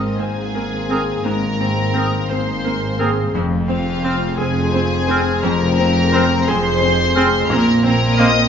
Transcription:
Already playing: G#2 D#3 A#3 C4 D#4 G#4 A#4 D#5
0.01 C5
0.18 G#1 G#2 A#3 C4 G#4 C5 G#5
0.38 A#5
0.55 A#3 C4 A#4 G#5
0.74 C5
0.89 A#3 C4 G#4 A#4 D#6
1.09 G#4
1.24 G#1 G#2 A#3 C4 A#4 A#5
1.45 D#3
1.60 A#3 C4
1.80 G#4
1.93 A#3 C4 A#4 D#6
2.14 C5
2.28 G#1 G#2 A#3 C4 C5 G#5 C6
2.48 A#5
2.65 A#3 C4 A#4 G#5
2.82 C5
2.99 A#3 C4 G#4 A#4 D#6
3.16 G#4
3.32 F1 F2 F3 C4
3.51 C3
3.67 C4 F4 F5
3.85 G#4
4.02 C4 C5 F6
4.20 G#4
4.37 F1 F2 C4 G#4 G#5
4.41 G#4
4.55 C6
4.72 C4 C5
4.91 C5
5.07 C4 G#4 C5 F6
5.27 C4
5.43 F1 F2 C4 A#4 A#5
5.62 C3
5.78 C4
5.96 G#4
6.12 C4 C5 F6
6.31 G#4
6.46 F1 F2 C4 G#4 C5 G#5 C6
6.80 C4 C5 G#5
7.00 C5
7.14 C4 G#4 C5 F6
7.50 A#1 A#2 F3 A#3 C4 A#4 A#5
7.67 F3
7.83 A#3 C4 A#4 A#5
8.01 F4
8.17 A#3 C4 A#4 C5 D#5 D#6 F6
8.36 C5

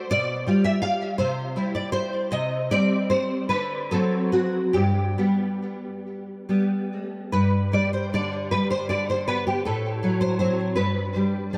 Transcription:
0.11 B2 D5
0.47 G3 F4
0.64 E5
0.82 F5
1.18 C3 C5
1.56 G3 E4
1.75 D5
1.92 C5
2.32 C3 D#5
2.71 G3 C4 D5
3.10 C5
3.49 D3 B4
3.91 F#3 C4 A4
4.32 F#4
4.73 G2 G4
5.18 G3 B3
6.49 G3 B3
7.32 G2 B4
7.73 G3 D5
7.93 C5
8.14 D3 D5
8.51 G3 B4
8.70 C5
8.89 D3 D5
9.10 C5
9.28 B3 B4
9.47 G4
9.65 A2 A4
10.03 F#3
10.21 C5
10.39 F#3 C4 C5
10.76 G2 B4
11.16 G3
11.53 G3 D4

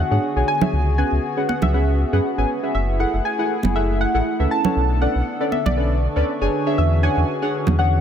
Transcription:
Already playing: D3 B3 D4 F#4 G#4 F#5 G#5 C#6
0.11 G#2 D4 G#4 C#5 F#5
0.36 B1 D4 G#4 C#5 G#5
0.48 G#5
0.61 D4 G#4 C#5 E5, low conga
0.73 C#2 B3 C#4
0.86 B4
0.98 C#4 G#4 B4 F#5 G#5
1.12 C#2
1.37 C#4 G#4 B4 F#5
1.49 F#5, high conga
1.62 C#2 E5, high conga, low conga
1.74 C#4 G#4 B4 F#5
2.13 F#2 C#4 G#4 B4 F#5
2.38 G#1 C#4 G#4 B4 G#5
2.63 C#4 G#4 B4 E5
2.75 F#1 A3 E4 G#4 E5
2.91 A3
3.00 E4 G#4 A4 F#5
3.14 F#1
3.25 G#5
3.39 E4 G#4 A4 F#5
3.63 F#1, high conga, low conga
3.75 E4 G#4 A4 E5 F#5
4.01 F#5
4.14 A1 E4 G#4 A4 F#5
4.39 C#2 C#4 A4 B4 E5
4.51 D3 B3 D4 A4 A5
4.65 C#4 A4 B4 C#5, low conga
4.76 B1
5.01 C#4 A4 B4 D5 F#5
5.15 B1
5.20 B4
5.40 C#4 A4 B4 D5 A5 C#6
5.52 E5, high conga
5.66 B1 D5, high conga, low conga
5.77 C#4 A4 B4 D5
6.16 D2 C#4 A4 B4 D5
6.41 F#1 D4 G#4 C#5 G#5
6.53 C#4 D4 F#4 G#4
6.66 D4 G#4 C#5 E5
6.78 E2 E5
7.03 D4 G#4 C#5 F#5 G#5
7.17 E2
7.26 G#5
7.42 D4 G#4 C#5 F#5
7.55 F#5
7.67 E2, high conga, low conga
7.79 D4 G#4 C#5 F#5

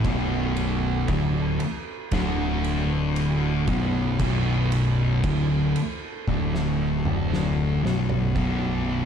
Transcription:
0.04 B0 B1 B2, kick, ride
0.56 ride
1.08 D1 D2 D3, kick, ride
1.60 ride
2.11 D1 D2 D3, kick, snare, ride
2.64 ride
3.16 ride
3.67 B0 B1 B2, kick, ride
4.19 B0 B1 B2, kick, ride
4.72 ride
5.24 D1 D2 D3, kick, ride
5.76 ride
6.28 D1 D2 D3, kick
6.55 snare
7.05 mid tom
7.34 snare
7.84 B0 B1 B2, snare
8.10 floor tom
8.36 B0 B1 B2, kick, crash

